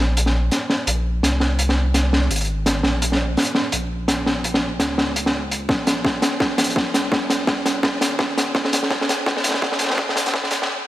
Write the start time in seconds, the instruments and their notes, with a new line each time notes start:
Already playing: sub bass A#1
0.17 closed hi-hat
0.26 snare
0.52 snare, closed hi-hat
0.70 snare
0.87 sub bass A#1, closed hi-hat
1.23 sub bass C2, snare, closed hi-hat
1.40 snare
1.59 closed hi-hat
1.69 snare
1.94 snare, closed hi-hat
2.13 snare
2.30 sub bass G#1, closed hi-hat
2.36 closed hi-hat
2.41 closed hi-hat
2.45 closed hi-hat
2.66 snare, closed hi-hat
2.83 sub bass A#1, snare
3.02 closed hi-hat
3.12 snare
3.14 snare
3.16 snare
3.18 snare
3.37 snare, closed hi-hat
3.40 closed hi-hat
3.42 closed hi-hat
3.45 closed hi-hat
3.55 snare
3.72 sub bass A#1, closed hi-hat
4.08 sub bass A#1, snare, closed hi-hat
4.26 snare
4.44 closed hi-hat
4.54 snare
4.79 sub bass C#2, snare, closed hi-hat
4.98 snare
5.16 closed hi-hat
5.26 snare
5.51 closed hi-hat
5.69 sub bass A#1, kick, snare
5.87 snare, closed hi-hat
6.05 kick, snare
6.22 snare, closed hi-hat
6.40 kick, snare
6.58 sub bass A#1, snare, closed hi-hat
6.64 closed hi-hat
6.70 closed hi-hat
6.76 kick, snare
6.94 sub bass C2, snare, closed hi-hat
7.12 kick, snare
7.30 snare, closed hi-hat
7.47 kick, snare
7.66 snare, closed hi-hat
7.83 kick, snare
8.01 sub bass G#1, snare, closed hi-hat
8.19 kick, snare
8.38 snare, closed hi-hat
8.55 sub bass A#1, kick, snare
8.65 snare
8.73 snare, closed hi-hat
8.83 snare
8.90 kick, snare
9.01 snare
9.09 snare, closed hi-hat
9.26 kick, snare
9.37 snare
9.44 sub bass A#1, snare, closed hi-hat
9.48 snare
9.51 snare
9.54 snare
9.62 kick, snare
9.72 snare
9.79 sub bass A#1, snare, closed hi-hat
9.82 snare
9.85 snare
9.87 snare
9.90 snare
9.92 snare
9.94 snare
9.96 kick, snare
9.98 snare
10.09 snare
10.16 snare, closed hi-hat
10.26 snare, closed hi-hat
10.34 kick, snare
10.44 snare
10.51 snare, closed hi-hat
10.62 snare